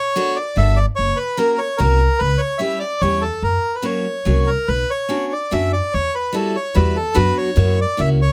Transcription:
0.00 0.38 C#5 loud
0.16 0.37 B3 medium
0.16 0.36 D4 soft
0.16 0.37 F#4 medium
0.16 0.37 A4 medium
0.36 0.57 D5 medium
0.56 0.83 G1 medium
0.56 0.77 B3 soft
0.56 0.78 D4 soft
0.56 0.77 F#4 soft
0.56 0.78 A4 soft
0.56 0.79 E5 medium
0.77 0.86 D5 medium
0.96 1.12 F#1 medium
0.96 1.18 C#5 loud
1.16 1.38 B4 medium
1.37 1.59 A#3 medium
1.37 1.59 C#4 soft
1.37 1.59 F#4 medium
1.37 1.60 A#4 medium
1.37 1.59 A#4 medium
1.58 1.80 C#5 medium
1.78 2.07 C2 loud
1.78 2.00 A#3 medium
1.78 2.00 C#4 soft
1.78 2.00 F#4 soft
1.78 2.21 A#4 medium
1.78 2.00 A#4 medium
2.19 2.34 C#2 medium
2.19 2.41 B4 loud
2.38 2.60 C#5 medium
2.58 2.81 G3 medium
2.58 2.81 C#4 medium
2.58 2.81 E4 soft
2.58 2.81 G4 medium
2.58 2.79 E5 medium
2.79 3.02 D5 medium
3.01 3.29 E2 medium
3.01 3.23 G3 soft
3.01 3.24 C#4 soft
3.01 3.24 E4 soft
3.01 3.23 G4 soft
3.01 3.23 C#5 loud
3.21 3.43 A4 medium
3.42 3.56 F#2 medium
3.42 3.76 A#4 medium
3.75 3.86 B4 medium
3.82 4.05 F#3 medium
3.82 4.05 A#3 soft
3.82 4.05 C#4 medium
3.82 4.05 F#4 medium
3.82 4.50 C#5 medium
4.25 4.54 C2 medium
4.25 4.48 F#3 medium
4.25 4.48 A#3 soft
4.25 4.48 C#4 soft
4.25 4.48 F#4 soft
4.47 4.69 A#4 medium
4.68 4.82 B1 medium
4.68 4.90 B4 loud
4.90 5.33 C#5 medium
5.09 5.31 B3 soft
5.09 5.31 C#4 medium
5.09 5.31 D4 soft
5.09 5.31 F#4 medium
5.33 5.53 D5 medium
5.51 5.79 F#2 medium
5.51 5.73 B3 medium
5.51 5.73 C#4 soft
5.51 5.73 D4 soft
5.51 5.73 F#4 medium
5.51 5.72 E5 medium
5.73 5.94 D5 medium
5.94 6.08 E2 medium
5.94 6.15 C#5 loud
6.15 6.35 B4 medium
6.33 6.55 G3 medium
6.33 6.55 B3 soft
6.33 6.55 E4 medium
6.33 6.55 F#4 medium
6.33 6.56 A4 medium
6.56 6.77 C#5 medium
6.74 7.03 E2 loud
6.74 6.96 G3 soft
6.74 6.96 B3 soft
6.74 6.96 E4 soft
6.74 6.96 F#4 soft
6.74 6.97 B4 medium
6.96 7.17 A4 medium
7.14 7.30 F#2 medium
7.14 7.49 F#3 medium
7.14 7.49 B3 medium
7.14 7.49 D4 medium
7.14 7.49 F#4 medium
7.14 7.38 B4 loud
7.38 7.80 C#5 medium
7.56 7.84 F#2 loud
7.56 7.78 A#3 medium
7.56 7.78 C#4 soft
7.56 7.78 E4 soft
7.56 7.78 F#4 medium
7.81 8.01 D5 medium
7.97 8.26 C#2 loud
7.97 8.19 A#3 soft
7.97 8.20 C#4 medium
7.97 8.19 E4 soft
7.97 8.20 F#4 medium
7.97 8.09 E5 medium
8.22 8.32 C#5 medium

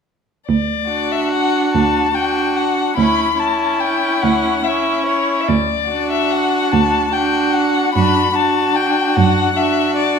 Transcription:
0.48 1.58 D2 soft
0.48 1.13 D5 soft
0.90 2.13 D4 soft
0.90 2.12 F#4 soft
1.12 1.31 E5 soft
1.32 1.73 F#5 soft
1.74 2.81 D2 soft
1.74 2.16 A5 soft
2.15 2.96 D4 soft
2.15 2.96 F#4 soft
2.15 2.58 G5 soft
2.56 2.96 F#5 soft
2.96 4.07 D2 soft
2.96 3.38 C#4 soft
2.96 3.38 E4 soft
2.96 3.41 B5 medium
3.39 4.63 C#4 soft
3.39 4.62 E4 soft
3.39 3.81 A5 soft
3.80 4.23 G5 soft
4.22 5.32 D2 soft
4.22 4.65 F#5 soft
4.63 5.47 C#4 soft
4.63 5.47 E4 soft
4.63 5.05 E5 soft
5.06 5.42 C#5 soft
5.40 5.48 E5 soft
5.47 6.56 D2 soft
5.47 6.10 D5 soft
5.90 7.12 D4 soft
5.90 7.10 F#4 soft
6.11 6.32 E5 soft
6.30 6.73 F#5 soft
6.72 7.79 D2 soft
6.72 7.14 A5 medium
7.13 7.94 D4 soft
7.13 7.93 F#4 soft
7.13 7.55 G5 soft
7.53 7.93 F#5 medium
7.93 9.00 F#2 soft
7.93 8.35 D4 soft
7.93 8.34 F#4 soft
7.93 8.36 B5 medium
8.35 9.55 D4 soft
8.35 9.54 F#4 soft
8.35 8.77 A5 soft
8.76 9.17 G5 medium
9.15 10.19 F#2 soft
9.15 9.58 F#5 medium
9.57 10.19 D4 soft
9.57 10.19 F#4 soft
9.57 9.95 E5 medium
9.96 10.19 D5 medium

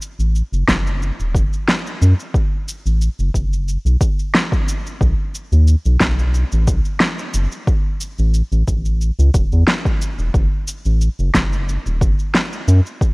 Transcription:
0.02 cabasa medium
0.19 0.42 A1 medium
0.19 cabasa soft
0.35 cabasa soft
0.52 0.63 F#1 loud
0.52 cabasa soft
0.68 1.11 F#1 medium
0.68 kick medium
0.68 snare medium
0.68 cabasa medium
0.87 cabasa soft
1.02 cabasa soft
1.20 1.36 D#1 medium
1.20 cabasa soft
1.34 1.47 F#1 loud
1.34 kick loud
1.34 cabasa medium
1.53 cabasa soft
1.68 snare medium
1.68 cabasa soft
1.87 cabasa soft
2.02 2.14 F#2 loud
2.02 cabasa medium
2.20 cabasa soft
2.35 kick loud
2.35 cabasa soft
2.69 cabasa medium
2.86 3.09 A1 medium
2.86 cabasa soft
3.02 cabasa soft
3.19 3.30 F#1 medium
3.19 cabasa soft
3.34 3.78 F#1 medium
3.34 kick medium
3.34 cabasa medium
3.53 cabasa soft
3.69 cabasa soft
3.85 3.97 B1 medium
3.85 cabasa soft
4.01 kick loud
4.01 cabasa medium
4.19 cabasa soft
4.35 snare medium
4.35 cabasa soft
4.52 kick loud
4.52 cabasa soft
4.68 cabasa medium
4.87 cabasa soft
5.01 5.14 B1 medium
5.01 kick loud
5.01 cabasa soft
5.35 cabasa medium
5.52 5.75 D#2 medium
5.52 cabasa soft
5.68 cabasa soft
5.85 5.97 B1 loud
5.85 cabasa soft
6.00 6.44 B1 medium
6.00 kick medium
6.00 snare medium
6.00 cabasa medium
6.19 cabasa soft
6.34 cabasa soft
6.52 6.69 A1 medium
6.52 cabasa soft
6.67 6.80 B1 loud
6.67 kick loud
6.67 cabasa medium
6.85 cabasa soft
7.00 snare medium
7.00 cabasa soft
7.19 cabasa soft
7.34 7.47 F#1 loud
7.34 cabasa medium
7.52 cabasa soft
7.67 kick loud
7.67 cabasa soft
8.01 cabasa medium
8.19 8.42 A1 medium
8.19 cabasa soft
8.34 cabasa soft
8.52 8.63 A1 medium
8.52 cabasa soft
8.67 9.11 A1 medium
8.67 kick medium
8.67 cabasa medium
8.85 cabasa soft
9.01 cabasa soft
9.19 9.30 C#2 medium
9.19 cabasa soft
9.34 9.47 E1 loud
9.34 kick loud
9.34 cabasa medium
9.52 9.63 E2 loud
9.52 cabasa soft
9.67 snare medium
9.67 cabasa soft
9.85 kick loud
9.85 cabasa soft
10.02 cabasa medium
10.19 10.30 E1 medium
10.19 cabasa soft
10.34 10.47 F#1 loud
10.34 kick loud
10.34 cabasa soft
10.68 cabasa medium
10.85 11.09 A1 medium
10.85 cabasa soft
11.01 cabasa soft
11.19 11.30 F#1 medium
11.19 cabasa soft
11.34 11.78 F#1 medium
11.34 kick medium
11.34 snare medium
11.34 cabasa medium
11.53 cabasa soft
11.69 cabasa soft
11.86 12.03 D#1 medium
11.86 cabasa soft
12.01 12.14 F#1 loud
12.01 kick loud
12.01 cabasa medium
12.19 cabasa soft
12.34 snare medium
12.34 cabasa soft
12.52 cabasa soft
12.68 12.80 F#2 loud
12.68 cabasa medium
12.86 cabasa soft
13.01 kick loud
13.01 cabasa soft

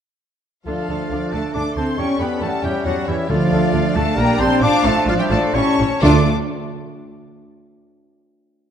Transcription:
0.65 0.74 D2 soft
0.65 1.28 F3 soft
0.65 1.29 F3 soft
0.65 2.00 A3 soft
0.65 1.95 D4 soft
0.65 0.75 D4 soft
0.65 1.34 F4 medium
0.65 0.74 A4 soft
0.65 1.08 A4 soft
0.65 1.29 D5 medium
0.65 1.29 F5 medium
0.89 0.97 D2 soft
0.89 0.97 D4 soft
0.89 0.97 A4 soft
1.11 1.19 D2 soft
1.11 1.19 D4 soft
1.11 1.19 A4 soft
1.11 1.55 D5 medium
1.33 1.41 D2 soft
1.33 1.41 A3 medium
1.33 1.55 A3 soft
1.33 1.41 D4 soft
1.33 1.56 A4 soft
1.33 1.41 A4 soft
1.33 1.39 F5 medium
1.33 1.55 A5 medium
1.54 1.63 D2 soft
1.54 1.62 D4 medium
1.54 1.62 D4 soft
1.54 1.65 D4 medium
1.54 1.63 A4 soft
1.54 2.41 A4 medium
1.54 1.79 D5 medium
1.54 1.61 A5 medium
1.54 1.76 D6 medium
1.76 1.84 D2 soft
1.76 1.98 C4 medium
1.76 1.84 D4 soft
1.76 1.84 A4 soft
1.76 1.98 C5 medium
1.76 1.82 A5 medium
1.76 1.98 C6 medium
1.97 2.06 E2 soft
1.97 3.28 G3 medium
1.97 2.19 C#4 medium
1.97 2.20 C#4 medium
1.97 2.06 C#4 soft
1.97 3.27 C#4 medium
1.97 2.06 G4 soft
1.97 2.09 C#5 medium
1.97 2.18 G5 medium
1.97 2.20 C#6 medium
2.19 2.28 E2 soft
2.19 2.42 B3 medium
2.19 2.28 C#4 soft
2.19 2.28 G4 soft
2.19 2.41 B4 medium
2.19 2.25 G5 medium
2.19 2.42 B5 medium
2.41 2.49 E2 medium
2.41 2.63 A3 medium
2.41 2.64 A3 medium
2.41 2.50 C#4 soft
2.41 2.50 G4 soft
2.41 2.64 A4 medium
2.41 3.30 C#5 medium
2.41 2.64 F#5 medium
2.41 2.64 A5 medium
2.63 2.72 E2 medium
2.63 2.73 G3 medium
2.63 2.72 G3 medium
2.63 2.72 C#4 soft
2.63 2.72 G4 soft
2.63 2.86 G4 medium
2.63 2.85 E5 medium
2.63 2.85 G5 medium
2.85 2.94 E2 medium
2.85 3.07 F#3 medium
2.85 2.94 C#4 medium
2.85 3.09 F#4 medium
2.85 2.94 G4 soft
2.85 3.07 D5 medium
2.85 3.07 F#5 medium
3.06 3.16 E2 medium
3.06 3.29 E3 medium
3.06 3.15 E3 medium
3.06 3.15 C#4 soft
3.06 3.31 E4 medium
3.06 3.15 G4 medium
3.06 3.29 C#5 medium
3.06 3.29 E5 medium
3.28 3.38 D2 medium
3.28 3.92 D3 medium
3.28 3.94 F3 medium
3.28 3.95 F3 medium
3.28 4.18 A3 medium
3.28 3.37 D4 medium
3.28 5.56 D4 medium
3.28 3.98 F4 medium
3.28 3.37 A4 medium
3.28 3.94 D5 medium
3.28 4.16 D5 medium
3.28 3.95 F5 medium
3.52 3.60 D2 medium
3.52 3.60 D4 medium
3.52 3.60 A4 medium
3.73 3.82 D2 medium
3.73 3.81 D4 medium
3.73 3.81 A4 medium
3.95 4.04 D2 medium
3.95 4.05 A3 medium
3.95 4.18 A3 medium
3.95 4.04 D4 medium
3.95 4.03 A4 medium
3.95 4.19 A4 medium
3.95 4.18 F5 medium
3.95 4.17 A5 medium
4.16 4.25 A#1 medium
4.16 4.63 G3 medium
4.16 4.39 A#3 medium
4.16 4.40 A#3 medium
4.16 4.26 D4 medium
4.16 4.25 G4 medium
4.16 4.39 A#4 medium
4.16 4.61 D5 medium
4.16 4.40 G5 medium
4.16 4.40 A#5 loud
4.39 4.48 A#1 medium
4.39 4.62 C4 medium
4.39 4.47 D4 medium
4.39 4.47 G4 medium
4.39 4.64 C5 medium
4.39 4.60 A5 medium
4.39 4.62 C6 loud
4.61 4.70 A1 medium
4.61 5.56 F3 medium
4.61 4.85 D4 medium
4.61 4.70 D4 medium
4.61 4.85 D4 loud
4.61 4.69 F4 medium
4.61 4.86 D5 loud
4.61 5.07 F5 medium
4.61 4.84 A5 loud
4.61 4.85 D6 loud
4.84 4.93 A1 medium
4.84 5.07 A3 medium
4.84 5.08 A3 medium
4.84 4.92 D4 medium
4.84 4.92 F4 medium
4.84 5.08 A4 medium
4.84 4.92 F5 medium
4.84 5.08 A5 loud
5.06 5.15 A1 medium
5.06 5.20 F3 medium
5.06 5.14 D4 medium
5.06 5.15 F4 medium
5.06 5.14 F4 medium
5.06 5.12 D5 medium
5.06 5.53 D5 medium
5.06 5.13 F5 loud
5.18 5.31 G3 medium
5.18 5.33 G4 medium
5.18 5.30 E5 medium
5.18 5.24 G5 medium
5.30 5.39 A1 medium
5.30 5.39 A3 medium
5.30 5.55 A3 medium
5.30 5.38 D4 medium
5.30 5.38 F4 medium
5.30 5.56 A4 medium
5.30 5.54 F5 medium
5.30 5.39 A5 loud
5.53 5.63 A1 medium
5.53 5.79 G3 medium
5.53 6.02 C#4 medium
5.53 5.62 E4 medium
5.53 5.79 E4 medium
5.53 5.62 G4 medium
5.53 6.01 C#5 medium
5.53 5.79 C#5 medium
5.53 6.01 A5 medium
5.53 6.02 C#6 loud
5.79 5.87 A1 medium
5.79 5.87 E4 medium
5.79 5.87 G4 medium
6.01 6.29 D2 medium
6.01 6.25 D3 medium
6.01 6.22 A3 medium
6.01 6.29 A3 medium
6.01 6.21 D4 medium
6.01 6.29 D4 medium
6.01 6.29 F4 medium
6.01 6.22 F4 medium
6.01 6.28 A4 medium
6.01 6.22 D5 medium
6.01 6.29 D5 medium
6.01 6.29 D6 medium

